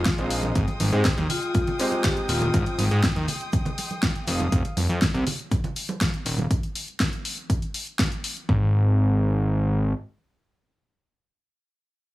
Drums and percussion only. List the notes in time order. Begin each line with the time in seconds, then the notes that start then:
0.05 kick, snare, closed hi-hat, cabasa
0.18 closed hi-hat
0.30 open hi-hat, cabasa
0.43 closed hi-hat, muted conga, high conga, low conga, cabasa
0.55 kick, closed hi-hat, cabasa
0.68 closed hi-hat, muted conga
0.80 open hi-hat, high conga, cabasa
0.93 closed hi-hat, cabasa
1.05 kick, snare, closed hi-hat, cabasa
1.18 closed hi-hat, high conga, cabasa
1.29 open hi-hat, low conga, cabasa
1.43 closed hi-hat, cabasa
1.55 kick, closed hi-hat, high conga, cabasa
1.67 closed hi-hat, low conga
1.79 open hi-hat, cabasa
1.92 closed hi-hat, muted conga, high conga, cabasa
2.04 kick, snare, closed hi-hat, cabasa
2.17 closed hi-hat
2.29 open hi-hat, cabasa
2.41 closed hi-hat, muted conga, high conga, low conga, cabasa
2.54 kick, closed hi-hat, cabasa
2.66 closed hi-hat, muted conga
2.79 open hi-hat, high conga, cabasa
2.91 closed hi-hat, cabasa
3.03 kick, snare, closed hi-hat, cabasa
3.16 closed hi-hat, high conga, cabasa
3.28 open hi-hat, low conga, cabasa
3.40 closed hi-hat, cabasa
3.52 kick, closed hi-hat, high conga, cabasa
3.66 closed hi-hat, low conga
3.78 open hi-hat, muted conga, cabasa
3.91 closed hi-hat, high conga, cabasa
4.03 kick, snare, closed hi-hat, cabasa
4.15 closed hi-hat
4.27 open hi-hat, cabasa
4.40 closed hi-hat, muted conga, high conga, low conga, cabasa
4.52 kick, closed hi-hat, cabasa
4.65 closed hi-hat, muted conga
4.77 open hi-hat, high conga, cabasa
4.90 closed hi-hat, cabasa
5.02 kick, snare, closed hi-hat, cabasa
5.14 closed hi-hat, high conga, cabasa
5.27 open hi-hat, low conga, cabasa
5.39 closed hi-hat, cabasa
5.51 kick, closed hi-hat, high conga, cabasa
5.64 closed hi-hat, low conga
5.76 open hi-hat, cabasa
5.89 closed hi-hat, muted conga, high conga, cabasa
6.01 kick, snare, closed hi-hat, cabasa
6.14 closed hi-hat
6.26 open hi-hat, cabasa
6.38 closed hi-hat, muted conga, high conga, low conga, cabasa
6.51 kick, closed hi-hat
6.63 closed hi-hat
6.75 open hi-hat
6.88 closed hi-hat
7.00 kick, snare, closed hi-hat
7.13 closed hi-hat
7.25 open hi-hat
7.38 closed hi-hat
7.50 kick, closed hi-hat
7.62 closed hi-hat
7.74 open hi-hat
7.87 closed hi-hat
7.99 kick, snare, closed hi-hat
8.12 closed hi-hat
8.24 open hi-hat
8.37 closed hi-hat
8.49 kick